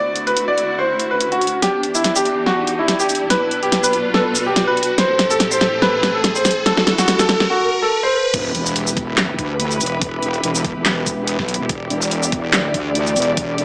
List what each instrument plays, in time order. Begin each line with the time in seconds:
Already playing: string section D2 D3 E4 F#4, grand piano D5, riser
0.16 closed hi-hat
0.27 grand piano B4, closed hi-hat
0.37 closed hi-hat
0.48 grand piano D5
0.58 closed hi-hat
0.79 grand piano C5
1.00 closed hi-hat
1.11 grand piano B4
1.21 closed hi-hat
1.32 grand piano F#4, closed hi-hat
1.41 closed hi-hat
1.47 closed hi-hat
1.62 string section E2 E3 D4 G4, grand piano G4, snare, closed hi-hat
1.83 closed hi-hat
1.95 grand piano E4, closed hi-hat, shaker
2.04 snare, closed hi-hat
2.16 grand piano G4, shaker
2.25 closed hi-hat
2.46 grand piano F#4, snare
2.67 closed hi-hat
2.79 grand piano E4
2.88 snare, closed hi-hat
3.00 grand piano G4, shaker
3.09 closed hi-hat, shaker
3.15 closed hi-hat
3.30 string section B2 F#3 B4, grand piano B4, snare, closed hi-hat
3.51 closed hi-hat
3.63 grand piano G4, closed hi-hat
3.72 snare, closed hi-hat
3.83 grand piano B4, shaker
3.93 closed hi-hat
4.14 grand piano A4, snare
4.35 closed hi-hat, shaker
4.46 grand piano G4
4.56 snare, closed hi-hat
4.67 grand piano B4
4.77 closed hi-hat
4.83 closed hi-hat
4.98 string section A2 E3 C4 A4, grand piano C5, snare, closed hi-hat
5.19 snare, closed hi-hat
5.30 grand piano A4, closed hi-hat, shaker
5.40 snare, closed hi-hat
5.51 grand piano C5, shaker
5.61 snare, closed hi-hat
5.82 grand piano B4, snare
6.03 snare, closed hi-hat
6.14 grand piano A4
6.24 snare, closed hi-hat
6.35 grand piano C5, shaker
6.45 snare, closed hi-hat, shaker
6.51 closed hi-hat
6.66 string section D2 D3 E4 F#4, grand piano A4, snare, closed hi-hat
6.77 snare
6.87 snare, closed hi-hat
6.98 grand piano F#4, snare, closed hi-hat, shaker
7.08 snare, closed hi-hat
7.19 grand piano A4, snare, shaker
7.29 snare, closed hi-hat
7.40 snare
7.50 grand piano F#4
7.82 grand piano A4
8.03 grand piano C5
8.34 wobble bass E1, string section E3 E4 G4 B4, kick, closed hi-hat, crash, sub drop
8.55 wobble bass E1, closed hi-hat
8.66 closed hi-hat, shaker
8.76 closed hi-hat
8.87 shaker
8.97 kick, closed hi-hat
9.18 snare, clap
9.39 wobble bass D2, kick, closed hi-hat
9.60 closed hi-hat
9.71 shaker
9.81 wobble bass E1, closed hi-hat, shaker
9.86 closed hi-hat
10.02 kick, closed hi-hat
10.22 closed hi-hat
10.34 closed hi-hat
10.44 wobble bass E1, closed hi-hat
10.55 shaker
10.64 kick, closed hi-hat
10.76 wobble bass E1
10.85 snare, clap
11.06 kick, closed hi-hat, shaker
11.27 closed hi-hat
11.39 wobble bass B1, kick, snare
11.48 closed hi-hat
11.54 closed hi-hat
11.60 wobble bass E1
11.69 wobble bass E1, string section D5, kick, closed hi-hat
11.90 wobble bass E1, closed hi-hat
12.02 closed hi-hat, shaker
12.11 closed hi-hat
12.23 shaker
12.32 kick, closed hi-hat
12.48 wobble bass D#1
12.53 snare, clap
12.74 wobble bass D2, kick, closed hi-hat
12.95 closed hi-hat
13.07 shaker
13.16 wobble bass E1, closed hi-hat, shaker
13.22 closed hi-hat
13.37 kick, closed hi-hat
13.58 closed hi-hat